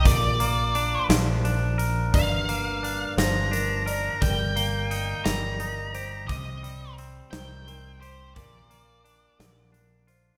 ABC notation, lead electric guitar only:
X:1
M:6/8
L:1/8
Q:3/8=58
K:Bb
V:1 name="Lead electric guitar"
d3 z3 | f3 b3 | g3 b3 | e2 z g2 c |
d4 z2 |]